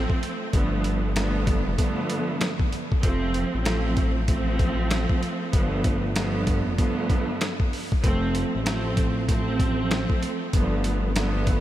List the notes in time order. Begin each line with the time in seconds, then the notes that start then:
Already playing: F3 A3 C4
0.10 kick
0.23 closed hi-hat
0.52 G1 G2 D3 F3 A3 B3, kick, closed hi-hat
0.84 closed hi-hat
1.15 G2 D3 F3 A3 B3, snare, closed hi-hat
1.47 kick, closed hi-hat
1.67 F1
1.76 G2 D3 F3 A3 B3, kick, closed hi-hat
2.10 closed hi-hat
2.41 snare, closed hi-hat
2.60 kick
2.73 closed hi-hat
2.92 kick
3.02 F1 F3 A3 C4, kick, closed hi-hat
3.34 closed hi-hat
3.54 A1
3.62 F3 A3 C4, closed hi-hat
3.66 snare
3.97 kick, closed hi-hat
4.28 F3 A3 C4, kick, closed hi-hat
4.59 kick, closed hi-hat
4.91 snare, closed hi-hat
5.09 kick
5.23 closed hi-hat
5.52 G1 G2 D3 F3 A3 B3, kick, closed hi-hat
5.84 kick, closed hi-hat
6.15 G2 D3 F3 A3 B3, snare, closed hi-hat
6.47 kick, closed hi-hat
6.67 F1
6.77 G2 D3 F3 A3 B3, kick, closed hi-hat
7.10 kick, closed hi-hat
7.41 snare, closed hi-hat
7.60 kick
7.73 open hi-hat
7.92 kick
8.02 F1 F3 A3 C4, kick, closed hi-hat
8.35 closed hi-hat
8.55 A1
8.63 F3 A3 C4, closed hi-hat
8.67 snare
8.97 kick, closed hi-hat
9.27 F3 A3 C4, kick, closed hi-hat
9.60 kick, closed hi-hat
9.91 snare, closed hi-hat
10.10 kick
10.23 closed hi-hat
10.52 G1 G2 D3 F3 A3 B3, kick, closed hi-hat
10.84 closed hi-hat
11.15 G2 D3 F3 A3 B3, snare, closed hi-hat
11.47 kick, closed hi-hat